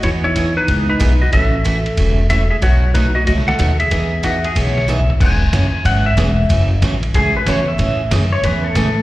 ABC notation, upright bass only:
X:1
M:4/4
L:1/8
Q:"Swing" 1/4=186
K:E
V:1 name="Upright bass" clef=bass
E,,4 C,,2 B,,,2 | A,,,4 E,,,4 | B,,,4 C,,2 D,,2 | E,,4 B,,,4 |
E,,,2 F,,, z G,,,2 E,,,2 | F,,,2 A,,,2 C,, z E,,2 | A,,2 F,,2 E,,2 A,,2 |]